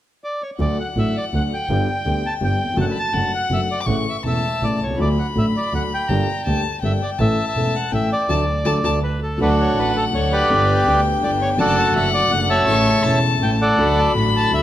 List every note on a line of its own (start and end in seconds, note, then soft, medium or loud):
0.24 0.42 D5 medium
0.42 0.50 C#5 medium
0.58 0.75 D2 medium
0.58 0.75 D3 medium
0.58 0.75 F#3 soft
0.58 0.75 A3 soft
0.58 0.75 F#4 medium
0.58 0.78 D5 medium
0.58 1.71 F#5 medium
0.80 0.88 F#5 medium
0.96 1.12 A1 soft
0.96 1.12 A2 soft
0.96 1.12 D3 soft
0.96 1.12 F#3 soft
0.96 1.12 A3 soft
0.96 1.12 F#4 soft
0.96 1.17 E5 medium
1.17 1.25 D5 medium
1.33 1.49 D2 soft
1.33 1.49 D3 soft
1.33 1.49 F#3 soft
1.33 1.49 A3 soft
1.33 1.49 F#4 soft
1.33 1.43 F#5 medium
1.54 2.27 G5 medium
1.69 1.85 G1 medium
1.69 1.85 G2 medium
1.69 1.85 D3 medium
1.69 1.85 G3 medium
1.69 1.85 B3 soft
1.69 1.85 G4 medium
1.69 2.79 G5 medium
2.05 2.21 D2 soft
2.05 2.21 D3 soft
2.05 2.21 G3 soft
2.05 2.21 B3 soft
2.05 2.21 G4 soft
2.26 2.34 A5 medium
2.40 2.57 G1 soft
2.40 2.57 G2 soft
2.40 2.57 D3 soft
2.40 2.57 G3 soft
2.40 2.57 B3 soft
2.40 2.57 G4 soft
2.45 2.77 G5 medium
2.64 2.69 D#2 soft
2.69 2.74 E2 soft
2.69 2.78 F2 medium
2.77 2.93 F#1 medium
2.77 2.93 F#2 medium
2.77 2.93 D3 medium
2.77 2.93 F#3 medium
2.77 2.93 A3 medium
2.77 2.93 F#4 medium
2.77 3.15 A5 medium
2.81 2.85 F#5 medium
2.92 2.97 B5 medium
2.99 3.32 A5 medium
3.12 3.30 F#1 soft
3.12 3.29 F#2 soft
3.12 3.29 D3 soft
3.12 3.29 F#3 soft
3.12 3.29 A3 soft
3.12 3.29 F#4 soft
3.12 3.82 F#5 medium
3.35 3.51 F#5 medium
3.50 3.66 F#1 soft
3.50 3.66 F#2 soft
3.50 3.66 D3 soft
3.50 3.66 F#3 soft
3.50 3.66 A3 soft
3.50 3.66 F#4 soft
3.50 3.61 E5 medium
3.71 3.79 D5 medium
3.81 3.87 D6 medium
3.86 4.03 A1 medium
3.86 4.03 A2 medium
3.86 4.03 C#3 medium
3.86 4.03 E3 soft
3.86 4.03 A3 medium
3.86 4.03 E4 medium
3.86 3.97 F#5 medium
3.86 4.25 C#6 medium
4.09 4.17 E5 medium
4.24 4.40 E1 soft
4.24 4.40 E2 soft
4.24 4.40 C#3 soft
4.24 4.40 E3 soft
4.24 4.40 A3 soft
4.24 4.40 E4 soft
4.24 4.64 E5 medium
4.24 4.80 A5 medium
4.61 4.77 A1 soft
4.61 4.78 A2 soft
4.61 4.77 C#3 soft
4.61 4.77 E3 soft
4.61 4.78 A3 soft
4.61 4.78 E4 soft
4.61 4.80 D5 medium
4.81 4.98 C2 soft
4.81 4.99 C#5 medium
4.86 4.90 B1 soft
4.90 4.95 C2 soft
4.94 4.99 C#2 medium
4.94 5.14 D2 medium
4.94 5.14 D3 medium
4.94 5.14 F#3 soft
4.94 5.14 A3 soft
4.98 5.15 D2 medium
4.98 5.15 F#4 medium
4.98 5.09 D5 medium
4.98 6.10 B5 medium
5.19 5.27 F#5 medium
5.35 5.51 A1 soft
5.35 5.52 A1 soft
5.35 5.51 A2 soft
5.35 5.51 D3 soft
5.35 5.51 F#3 soft
5.35 5.51 A3 soft
5.35 5.51 F#4 soft
5.35 5.46 E5 medium
5.57 5.73 D5 medium
5.73 5.89 D2 soft
5.73 5.89 D3 soft
5.73 5.88 F#3 soft
5.73 5.89 A3 soft
5.73 5.89 F#4 soft
5.73 5.83 F#5 medium
5.94 6.62 G5 medium
6.08 6.25 G1 medium
6.08 6.25 G2 medium
6.08 6.25 D3 medium
6.08 6.25 G3 soft
6.08 6.25 A#3 soft
6.08 6.25 G4 medium
6.08 6.45 A#5 medium
6.45 6.62 D2 soft
6.45 6.62 D3 soft
6.45 6.62 G3 soft
6.45 6.62 A#3 soft
6.45 6.62 G4 soft
6.45 6.80 A5 medium
6.82 6.98 G1 soft
6.82 6.98 G2 soft
6.82 6.98 D3 soft
6.82 6.98 G3 soft
6.82 6.98 A#3 soft
6.82 6.98 G4 soft
6.82 6.92 E5 medium
6.82 7.20 G5 medium
7.03 7.10 D5 medium
7.18 7.34 A1 medium
7.18 7.35 A2 medium
7.18 7.34 E3 medium
7.18 7.35 A3 medium
7.18 7.35 C#4 medium
7.18 7.35 A4 medium
7.18 7.45 E5 medium
7.18 7.94 A5 medium
7.48 7.75 E5 medium
7.55 7.71 E1 soft
7.55 7.71 E2 soft
7.55 7.71 E3 soft
7.55 7.71 A3 soft
7.55 7.71 C#4 soft
7.55 7.71 A4 soft
7.75 7.92 F#5 medium
7.91 8.07 A1 soft
7.91 8.08 A1 soft
7.91 8.07 A2 soft
7.91 8.07 E3 soft
7.91 8.07 A3 soft
7.91 8.07 C#4 soft
7.91 8.07 A4 soft
7.91 8.10 E5 medium
7.91 8.28 G5 medium
8.12 8.99 D5 medium
8.29 8.43 D2 medium
8.29 8.40 D3 medium
8.29 8.41 F#3 medium
8.29 8.41 A3 medium
8.29 8.41 A5 medium
8.65 8.79 D2 medium
8.65 8.77 D3 medium
8.65 8.77 F#3 medium
8.65 8.77 A3 medium
8.65 8.77 A5 medium
8.84 8.98 D2 medium
8.84 8.96 D3 medium
8.84 8.96 F#3 medium
8.84 8.96 A3 medium
8.84 8.96 A5 medium
9.03 9.20 B4 soft
9.23 9.39 A4 medium
9.38 9.75 D2 medium
9.38 9.75 D3 medium
9.38 9.73 F#3 medium
9.38 9.74 A3 soft
9.38 9.75 D4 medium
9.38 9.75 D4 soft
9.38 9.92 D4 soft
9.38 9.75 F#4 medium
9.38 9.92 F#4 soft
9.38 9.75 A4 medium
9.38 9.76 A4 medium
9.38 9.50 B4 medium
9.38 10.51 F#5 medium
9.60 9.78 C#5 medium
9.75 10.11 A1 soft
9.75 10.11 A2 soft
9.75 10.10 F#3 soft
9.75 10.11 A3 soft
9.75 10.12 D4 soft
9.75 10.12 F#4 soft
9.75 10.12 A4 soft
9.79 10.13 A4 soft
9.79 9.97 B4 medium
9.97 10.04 A4 medium
10.12 10.48 D2 soft
10.12 10.48 D2 medium
10.12 10.47 D3 soft
10.12 10.47 F#3 soft
10.12 10.48 A3 soft
10.12 10.48 D4 soft
10.12 10.48 F#4 soft
10.12 10.48 A4 soft
10.12 10.33 C#5 medium
10.16 10.49 A4 soft
10.32 11.01 G4 medium
10.32 11.01 B4 medium
10.32 11.01 D5 medium
10.48 10.84 G1 medium
10.48 10.85 G1 medium
10.48 10.85 G2 medium
10.48 10.83 D3 medium
10.48 10.84 G3 soft
10.48 10.85 B3 medium
10.48 10.85 D4 medium
10.48 10.85 G4 medium
10.48 10.85 B4 medium
10.48 11.60 G5 medium
10.52 10.86 G4 medium
10.85 11.21 D2 soft
10.85 10.86 D3 soft
10.85 11.20 D3 soft
10.85 11.21 G3 soft
10.85 11.21 B3 soft
10.85 11.21 D4 soft
10.85 11.21 G4 soft
10.85 11.21 B4 soft
11.21 11.57 G1 soft
11.21 11.57 G2 soft
11.21 11.55 D3 soft
11.21 11.57 G3 soft
11.21 11.58 B3 soft
11.21 11.57 D4 soft
11.21 11.57 G4 soft
11.21 11.57 B4 soft
11.21 11.31 D5 medium
11.42 11.49 C#5 medium
11.57 11.93 F#1 medium
11.57 11.93 F#2 medium
11.57 11.92 D3 medium
11.57 11.93 F#3 medium
11.57 11.93 A3 medium
11.57 11.93 D4 medium
11.57 11.93 F#4 medium
11.57 12.09 F#4 medium
11.57 11.93 A4 medium
11.57 12.09 A4 medium
11.57 11.76 D5 medium
11.57 11.96 A5 medium
11.61 11.94 F#4 medium
11.78 11.85 F#5 medium
11.93 12.29 F#1 soft
11.93 12.29 F#2 soft
11.93 12.27 D3 soft
11.93 12.28 F#3 soft
11.93 12.29 A3 soft
11.93 12.29 D4 soft
11.93 12.29 F#4 soft
11.93 12.29 A4 soft
11.93 12.12 E5 medium
11.93 12.66 F#5 medium
11.97 12.30 F#4 soft
12.14 12.32 D5 medium
12.29 12.65 F#1 soft
12.29 12.65 F#2 soft
12.29 12.64 D3 soft
12.29 12.65 F#3 soft
12.29 12.66 A3 soft
12.29 12.65 D4 soft
12.29 12.65 F#4 soft
12.29 12.66 F#4 soft
12.29 12.65 A4 soft
12.29 12.39 F#5 medium
12.50 13.19 C#5 medium
12.50 13.19 E5 medium
12.50 13.19 A5 loud
12.65 13.02 A1 medium
12.65 13.02 A2 medium
12.65 13.00 C#3 medium
12.65 13.02 E3 soft
12.65 13.02 A3 medium
12.65 13.02 C#4 medium
12.65 13.02 E4 medium
12.65 13.03 E4 medium
12.65 13.02 A4 medium
12.65 13.05 C#6 medium
13.02 13.39 E1 soft
13.02 13.39 E2 soft
13.02 13.38 C#3 soft
13.02 13.39 E3 soft
13.02 13.39 A3 soft
13.02 13.39 C#4 soft
13.02 13.39 E4 soft
13.02 13.39 A4 soft
13.02 13.59 A5 medium
13.06 13.40 E4 soft
13.39 13.76 A1 soft
13.39 13.76 A2 soft
13.39 13.75 C#3 soft
13.39 13.76 E3 soft
13.39 13.77 A3 soft
13.39 13.76 C#4 soft
13.39 13.76 E4 soft
13.39 13.77 E4 soft
13.39 13.76 A4 soft
13.39 13.51 G5 medium
13.62 14.12 A4 medium
13.62 14.12 D5 medium
13.62 13.99 F#5 medium
13.76 14.13 D2 medium
13.76 13.78 D3 medium
13.76 14.12 D3 medium
13.76 14.13 F#3 soft
13.76 14.14 A3 soft
13.76 14.13 D4 soft
13.76 14.13 F#4 medium
13.76 14.13 A4 medium
13.76 14.63 B5 medium
13.80 14.14 F#4 medium
13.99 14.07 A5 medium
14.13 14.50 A1 soft
14.13 14.50 A1 medium
14.13 14.50 A2 soft
14.13 14.48 D3 soft
14.13 14.49 F#3 soft
14.13 14.50 A3 soft
14.13 14.50 D4 soft
14.13 14.50 F#4 soft
14.13 14.51 F#4 soft
14.13 14.50 A4 soft
14.13 14.25 B5 medium
14.36 14.52 A5 loud
14.49 14.63 D2 soft
14.49 14.63 D3 soft
14.49 14.63 F#3 soft
14.49 14.63 A3 soft
14.49 14.63 D4 soft
14.49 14.63 F#4 soft
14.49 14.63 A4 soft
14.54 14.62 E5 medium